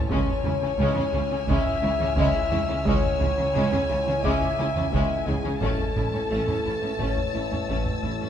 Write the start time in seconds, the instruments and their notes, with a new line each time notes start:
0.09 synth drone C#2, double bass section C#2, cello section C#3, violin section G#3 G#5 E6 F6, viola section C#4, ambient pad E4 C#5 G#5, french horn section C#5, taiko
0.28 taiko low-mid
0.44 double bass section C#2, cello section C#3, viola section C#4, violin section E4, taiko low-mid
0.62 cello section C#3, viola section C#4, violin section C#4
0.78 double bass section C#2, cello section C#3, violin section G#3, viola section C#4
0.96 cello section C#3, viola section C#4, violin section C#4, taiko low-mid
1.13 double bass section C#2, cello section C#3, viola section C#4, violin section E4
1.31 cello section C#3, violin section C#4, viola section C#4
1.47 double bass section C#2, cello section C#3, violin section G#3, viola section C#4, french horn section E5, taiko
1.66 taiko low-mid
1.82 double bass section C#2, cello section C#3, viola section C#4, violin section E4
2.00 cello section C#3, viola section C#4, violin section C#4, taiko low-mid
2.17 double bass section C#2, cello section C#3, violin section G#3, viola section C#4, french horn section E5, taiko
2.34 taiko low-mid
2.51 double bass section C#2, cello section C#3, viola section C#4, violin section E4, taiko low-mid
2.68 cello section C#3, violin section C#4, viola section C#4
2.85 double bass section C#2, synth drone C#2, cello section C#3, violin section G#3 G#5, viola section C#4, ambient pad E4 G#5, french horn section C#5, taiko
3.03 taiko low-mid
3.20 double bass section C#2, cello section C#3, viola section C#4, violin section E4, taiko low-mid
3.37 cello section C#3, violin section C#4, viola section C#4
3.54 double bass section C#2, cello section C#3, violin section G#3, viola section C#4
3.72 cello section C#3, violin section C#4, viola section C#4, taiko low-mid
3.89 double bass section C#2, cello section C#3, viola section C#4, violin section E4
4.07 cello section C#3, viola section C#4, violin section C#4
4.23 double bass section C#2, cello section C#3, violin section G#3, viola section C#4, harp D5 D6, french horn section E5, taiko
4.41 taiko low-mid
4.58 double bass section C#2, cello section C#3, viola section C#4, violin section E4
4.76 cello section C#3, viola section C#4, violin section C#4, taiko low-mid
4.91 double bass section C#2, cello section C#3, violin section G#3, viola section C#4, french horn section E5, taiko
5.10 taiko low-mid
5.27 double bass section C#2, cello section C#3, viola section C#4, violin section E4, french horn section G#4, taiko low-mid
5.44 cello section C#3, violin section C#4, viola section C#4
5.61 synth drone A1, double bass section A1, cello section A2, violin section A3 A5 E6, viola section C#4, french horn section A4, ambient pad A5, taiko
5.78 taiko low-mid
5.96 double bass section A1, cello section A2, viola section C#4, violin section E4, taiko low-mid
6.13 cello section A2, violin section C#4, viola section C#4
6.30 double bass section A1, cello section A2, violin section A3 A6, viola section C#4
6.47 cello section A2, violin section C#4, viola section C#4, taiko low-mid
6.65 double bass section A1, cello section A2, viola section C#4, violin section E4
6.82 cello section A2, violin section C#4, viola section C#4
6.99 double bass section A1, cello section A2, violin section A3, viola section C#4, french horn section C#5, taiko
7.17 taiko low-mid
7.33 double bass section A1, cello section A2, viola section C#4, violin section E4
7.50 cello section A2, violin section C#4, viola section C#4, taiko low-mid
7.68 double bass section A1, cello section A2, violin section A3, viola section C#4, taiko
7.86 taiko low-mid
8.02 double bass section A1, cello section A2, viola section C#4, violin section E4, harp E5 E6, taiko low-mid
8.20 cello section A2, violin section C#4, viola section C#4